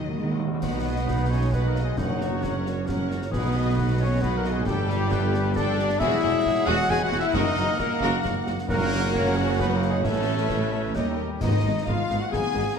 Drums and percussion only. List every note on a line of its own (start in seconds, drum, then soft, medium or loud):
0.63 concert bass drum medium
0.63 snare medium
0.63 crash soft
1.08 concert bass drum medium
1.08 snare medium
1.53 concert bass drum medium
1.53 snare medium
1.76 snare soft
1.98 concert bass drum medium
1.98 snare medium
2.21 snare medium
2.44 concert bass drum medium
2.44 snare medium
2.66 snare medium
2.89 concert bass drum medium
2.89 snare medium
3.11 snare soft
3.22 snare medium
3.33 concert bass drum medium
3.33 snare medium
3.78 concert bass drum medium
3.78 snare medium
4.23 concert bass drum medium
4.23 snare medium
4.45 snare soft
4.67 concert bass drum medium
4.67 snare medium
4.90 snare medium
5.12 concert bass drum medium
5.12 snare medium
5.34 snare medium
5.56 concert bass drum medium
5.56 snare medium
5.79 snare medium
5.90 snare medium
6.01 concert bass drum medium
6.01 snare medium
6.01 crash soft
6.46 concert bass drum medium
6.46 snare medium
6.90 concert bass drum medium
6.90 snare medium
7.12 snare medium
7.34 concert bass drum medium
7.34 snare medium
7.57 snare medium
7.79 concert bass drum medium
7.79 snare medium
8.03 snare medium
8.25 concert bass drum medium
8.25 snare medium
8.47 snare medium
8.59 snare medium
8.70 concert bass drum medium
8.70 snare medium
9.15 concert bass drum medium
9.15 snare medium
9.60 concert bass drum medium
9.60 snare medium
9.82 snare medium
10.04 concert bass drum medium
10.04 snare medium
10.50 concert bass drum medium
10.50 snare medium
10.96 concert bass drum medium
10.96 snare medium
11.42 concert bass drum medium
11.42 snare medium
11.42 crash medium
11.87 concert bass drum medium
12.10 snare medium
12.33 concert bass drum medium
12.33 snare medium